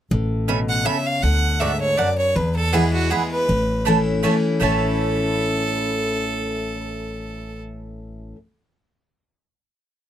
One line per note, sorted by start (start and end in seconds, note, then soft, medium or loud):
0.11 0.87 A1 medium
0.11 0.83 A2 medium
0.48 0.84 B2 medium
0.48 0.58 C#4 medium
0.48 0.58 A4 medium
0.48 0.59 E5 medium
0.48 0.59 B5 medium
0.69 0.87 F#5 medium
0.85 1.22 C#3 medium
0.85 0.95 C#4 medium
0.85 0.96 A4 medium
0.85 1.08 E5 medium
0.85 0.96 E5 medium
0.85 0.96 B5 loud
1.06 1.24 F5 medium
1.23 1.99 D2 medium
1.23 1.95 D3 medium
1.23 1.61 F#5 medium
1.60 1.97 G#2 medium
1.60 1.71 A3 medium
1.60 1.71 F#4 loud
1.60 1.71 D5 medium
1.60 1.80 E5 medium
1.60 1.71 F#5 medium
1.80 1.99 C#5 loud
1.97 2.34 F#2 medium
1.97 2.08 A3 medium
1.97 2.08 F#4 medium
1.97 2.17 D5 loud
1.97 2.08 D5 medium
1.97 2.09 F#5 medium
2.18 2.37 C#5 medium
2.36 3.11 E2 medium
2.36 3.08 E2 medium
2.36 2.55 B4 medium
2.56 2.75 A4 medium
2.73 3.09 E3 medium
2.73 3.10 G#3 medium
2.73 2.83 B3 medium
2.73 3.10 B3 medium
2.73 2.83 E4 medium
2.73 3.10 E4 loud
2.73 2.93 G#4 medium
2.73 2.83 B4 medium
2.73 2.84 G#5 loud
2.93 3.12 F#4 medium
3.10 3.47 E3 medium
3.10 3.47 G#3 medium
3.10 3.21 B3 medium
3.10 3.47 B3 medium
3.10 3.21 E4 medium
3.10 3.47 E4 medium
3.10 3.31 G#4 medium
3.10 3.21 B4 medium
3.10 3.21 G#5 medium
3.32 3.82 B4 medium
3.49 4.24 A1 medium
3.49 4.20 A2 medium
3.85 4.22 E3 medium
3.85 3.96 A3 medium
3.85 4.22 A3 medium
3.85 4.23 C#4 medium
3.85 3.96 E4 medium
3.85 4.23 E4 loud
3.85 3.96 C#5 medium
3.85 3.96 A5 medium
4.23 4.59 E3 medium
4.23 4.33 A3 medium
4.23 4.60 A3 medium
4.23 4.60 C#4 medium
4.23 4.33 E4 medium
4.23 4.60 E4 medium
4.23 4.34 C#5 medium
4.23 4.34 A5 medium
4.60 8.32 A1 medium
4.60 8.35 A2 medium
4.60 8.36 E3 medium
4.60 8.35 A3 medium
4.60 8.36 A3 medium
4.60 8.36 C#4 medium
4.60 8.36 E4 medium
4.60 7.62 A4 medium
4.60 8.36 C#5 medium
4.60 8.37 A5 medium